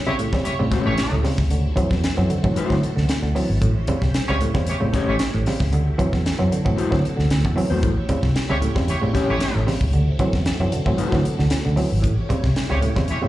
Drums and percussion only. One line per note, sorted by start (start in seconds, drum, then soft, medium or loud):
0.19 closed hi-hat medium
0.33 kick medium
0.33 snare soft
0.45 closed hi-hat loud
0.72 kick loud
0.72 snare soft
0.72 closed hi-hat medium
0.98 snare loud
0.98 closed hi-hat loud
1.25 snare soft
1.25 open hi-hat medium
1.38 kick loud
1.38 snare soft
1.50 closed hi-hat medium
1.77 kick medium
1.77 closed hi-hat medium
1.91 kick medium
1.91 snare soft
2.04 snare loud
2.04 closed hi-hat medium
2.30 closed hi-hat medium
2.44 kick loud
2.56 closed hi-hat loud
2.70 kick medium
2.70 snare soft
2.83 closed hi-hat medium
2.98 snare soft
3.09 snare loud
3.09 closed hi-hat medium
3.36 open hi-hat medium
3.62 kick loud
3.62 closed hi-hat medium
3.87 kick medium
3.87 closed hi-hat medium
4.02 kick loud
4.02 snare soft
4.14 snare loud
4.14 closed hi-hat medium
4.41 closed hi-hat medium
4.54 kick loud
4.54 snare soft
4.67 closed hi-hat loud
4.93 kick medium
4.93 snare soft
4.93 closed hi-hat medium
5.19 snare loud
5.19 closed hi-hat loud
5.46 snare soft
5.46 open hi-hat medium
5.60 kick loud
5.60 snare soft
5.73 closed hi-hat medium
5.99 kick medium
5.99 closed hi-hat medium
6.13 kick medium
6.13 snare soft
6.26 snare loud
6.26 closed hi-hat medium
6.52 closed hi-hat medium
6.66 kick loud
6.78 closed hi-hat medium
6.92 kick medium
6.92 snare soft
7.05 closed hi-hat medium
7.19 snare soft
7.30 snare loud
7.30 closed hi-hat loud
7.45 kick loud
7.58 open hi-hat medium
7.83 kick loud
7.83 closed hi-hat medium
8.09 kick medium
8.09 closed hi-hat medium
8.23 kick loud
8.23 snare soft
8.36 snare loud
8.36 closed hi-hat medium
8.62 closed hi-hat medium
8.76 kick medium
8.76 snare soft
8.88 closed hi-hat medium
9.15 kick medium
9.15 snare soft
9.15 closed hi-hat medium
9.40 snare loud
9.40 closed hi-hat loud
9.68 snare soft
9.68 open hi-hat medium
9.81 kick loud
9.93 closed hi-hat medium
10.19 kick medium
10.19 closed hi-hat medium
10.33 kick loud
10.33 snare soft
10.46 snare loud
10.46 closed hi-hat medium
10.72 closed hi-hat medium
10.86 kick medium
10.98 closed hi-hat medium
11.12 kick medium
11.12 snare soft
11.25 closed hi-hat medium
11.39 snare soft
11.50 snare loud
11.50 closed hi-hat loud
11.77 open hi-hat medium
12.04 kick loud
12.04 closed hi-hat medium
12.30 kick medium
12.30 closed hi-hat medium
12.44 kick medium
12.44 snare soft
12.56 snare loud
12.56 closed hi-hat medium
12.82 closed hi-hat medium
12.96 kick medium
12.96 snare soft
13.08 closed hi-hat medium